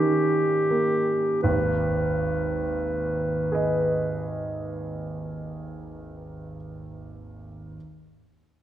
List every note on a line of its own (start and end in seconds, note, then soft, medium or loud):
0.00 1.39 G#2 soft
0.00 1.15 D#3 soft
0.00 0.71 A#3 soft
0.00 1.47 C#4 soft
0.00 1.42 G4 soft
0.71 1.44 A#3 soft
1.43 4.47 G#1 soft
1.43 4.47 D#2 soft
1.43 4.46 B4 soft
3.52 6.55 G#4 soft
3.52 6.56 B4 soft
3.52 6.58 D#5 soft